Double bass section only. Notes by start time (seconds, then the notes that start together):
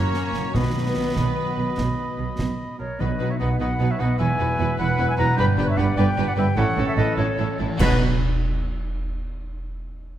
0.34 F#1
0.55 B1
0.75 B1
0.96 B1
1.18 B1
1.58 B1
1.79 B1
2.19 B1
2.39 B1
2.80 B1
3.01 B1
3.21 B1
3.42 B1
3.61 B1
3.81 B1
4.00 B1
4.20 E1
4.39 E1
4.59 E1
4.79 E1
4.99 E1
5.18 E1
5.38 G1
5.58 G1
5.77 G1
5.97 G1
6.18 G1
6.37 G1
6.57 A1
6.78 A1
6.97 A1
7.18 A1
7.39 A1
7.60 A1
7.80 B1